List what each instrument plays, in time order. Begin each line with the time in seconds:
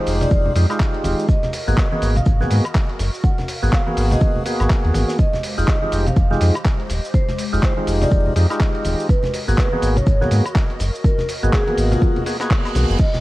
Already playing: tonewheel organ G#3 D#4 F4 G4, analog synth pad G#3 G4 C5 F5
0.06 sub bass F1, open hi-hat, shaker
0.21 vibraphone D5, snare, closed hi-hat, low conga, shaker
0.31 sub bass F1, kick, closed hi-hat, high conga, shaker
0.46 low conga
0.55 sub bass F2, tonewheel organ G#3 D#4 F4 G4, open hi-hat, shaker
0.69 tonewheel organ G#3 D#4 F4 G4, snare, closed hi-hat, high woodblock, shaker
0.80 kick, snare, clap, closed hi-hat, shaker
0.94 closed hi-hat
1.04 sub bass D#1, open hi-hat, high conga, shaker
1.19 shaker
1.29 analog synth pad F#4 A#4 D#5, vibraphone D#5, kick, closed hi-hat, shaker
1.43 snare, closed hi-hat, low conga
1.53 open hi-hat, shaker
1.67 sub bass G#1, tonewheel organ A#3 B3 F#4 G#4, closed hi-hat, shaker
1.77 vibraphone D#5, kick, snare, clap, closed hi-hat, shaker
1.92 tonewheel organ A#3 B3 F#4 G#4, high conga
2.02 sub bass G#1, open hi-hat, shaker
2.16 vibraphone F5, closed hi-hat, low conga, shaker
2.26 sub bass G#1, kick, closed hi-hat, shaker
2.40 tonewheel organ A#3 B3 F#4 G#4, snare, high conga, low conga
2.51 sub bass G#2, snare, open hi-hat, shaker
2.65 closed hi-hat, high woodblock, shaker
2.75 kick, snare, clap, closed hi-hat, shaker
2.89 closed hi-hat
2.99 sub bass F#1, snare, open hi-hat, shaker
3.14 shaker
3.24 analog synth pad F5, vibraphone F#5, kick, closed hi-hat, shaker
3.38 snare, closed hi-hat, low conga
3.48 open hi-hat, shaker
3.62 sub bass G#1, tonewheel organ A#3 B3 F#4 G#4, shaker
3.73 vibraphone F5, kick, snare, clap, closed hi-hat, shaker
3.86 tonewheel organ A#3 B3 F#4 G#4, high conga
3.97 sub bass G#1, open hi-hat, shaker
4.11 vibraphone D#5, snare, closed hi-hat, low conga, shaker
4.21 kick, closed hi-hat, high conga, shaker
4.35 low conga
4.45 tonewheel organ A#3 B3 F#4 G#4, open hi-hat, shaker
4.60 sub bass G#1, snare, closed hi-hat, high woodblock, shaker
4.70 kick, snare, clap, closed hi-hat, shaker
4.85 sub bass D#2, closed hi-hat
4.94 sub bass G#1, snare, open hi-hat, high conga, shaker
5.09 snare, shaker
5.19 analog synth pad G#3 G4 C5 D#5, vibraphone D#5, kick, closed hi-hat, shaker
5.33 snare, closed hi-hat, low conga
5.43 open hi-hat, shaker
5.57 sub bass F1, tonewheel organ G#3 D#4 F4 G4, closed hi-hat, shaker
5.67 vibraphone D#5, kick, snare, clap, shaker
5.82 tonewheel organ G#3 D#4 F4 G4, high conga
5.92 sub bass F1, open hi-hat, shaker
6.07 vibraphone F5, closed hi-hat, low conga, shaker
6.16 sub bass F1, kick, closed hi-hat, shaker
6.31 tonewheel organ G#3 D#4 F4 G4, snare, high conga, low conga
6.40 sub bass F2, snare, open hi-hat, shaker
6.55 closed hi-hat, high woodblock, shaker
6.65 kick, snare, clap, closed hi-hat, shaker
6.80 closed hi-hat
6.89 sub bass D#1, snare, open hi-hat, shaker
7.05 shaker
7.14 vibraphone C5, kick, closed hi-hat, shaker
7.28 snare, closed hi-hat, low conga
7.38 open hi-hat, shaker
7.53 sub bass F1, tonewheel organ G#3 D#4 F4 G4, shaker
7.62 vibraphone C5, kick, snare, clap, closed hi-hat, shaker
7.77 tonewheel organ G#3 D#4 F4 G4, high conga
7.87 sub bass F1, open hi-hat, shaker
8.01 vibraphone D5, snare, closed hi-hat, low conga, shaker
8.11 sub bass F1, kick, closed hi-hat, high conga, shaker
8.26 low conga
8.36 sub bass F2, tonewheel organ G#3 D#4 F4 G4, open hi-hat, shaker
8.50 tonewheel organ G#3 D#4 F4 G4, snare, closed hi-hat, high woodblock, shaker
8.60 kick, snare, clap, closed hi-hat, shaker
8.75 closed hi-hat
8.85 sub bass D#1, open hi-hat, high conga, shaker
9.00 shaker
9.09 analog synth pad F#4 A#4, vibraphone B4, kick, closed hi-hat, shaker
9.23 snare, closed hi-hat, low conga
9.34 open hi-hat, shaker
9.48 sub bass G#1, tonewheel organ A#3 B3 F#4 G#4, closed hi-hat, shaker
9.58 vibraphone B4, kick, snare, clap, shaker
9.72 tonewheel organ A#3 B3 F#4 G#4, high conga
9.82 sub bass G#1, open hi-hat, shaker
9.96 vibraphone C#5, closed hi-hat, low conga, shaker
10.07 sub bass G#1, kick, closed hi-hat, shaker
10.21 tonewheel organ A#3 B3 F#4 G#4, snare, high conga, low conga
10.31 sub bass G#2, snare, open hi-hat, shaker
10.46 closed hi-hat, high woodblock, shaker
10.55 kick, snare, clap, closed hi-hat, shaker
10.70 closed hi-hat
10.80 sub bass F#1, snare, open hi-hat, shaker
10.95 shaker
11.04 vibraphone A#4, kick, closed hi-hat, shaker
11.18 snare, closed hi-hat, low conga
11.29 open hi-hat, shaker
11.43 sub bass G#1, tonewheel organ A#3 B3 F#4 G#4, closed hi-hat, shaker
11.53 vibraphone G#4, kick, snare, clap, closed hi-hat, shaker
11.67 tonewheel organ A#3 B3 F#4 G#4, closed hi-hat, high conga
11.77 sub bass G#1, open hi-hat, shaker
11.91 vibraphone F4, snare, closed hi-hat, low conga, shaker
12.02 kick, closed hi-hat, reverse cymbal, high conga, shaker
12.16 closed hi-hat, low conga
12.26 tonewheel organ A#3 B3 F#4 G#4, snare, open hi-hat, shaker
12.40 tonewheel organ A#3 B3 F#4 G#4, snare, clap, closed hi-hat, high woodblock, shaker
12.51 kick, clap, closed hi-hat, shaker
12.65 snare, closed hi-hat, high woodblock, shaker
12.75 sub bass B1, snare, open hi-hat, high conga, shaker
12.89 sub bass F#1, closed hi-hat, shaker
12.99 analog synth pad G#3 G4 C5, vibraphone D#5, kick, closed hi-hat, crash, shaker
13.13 snare, closed hi-hat, low conga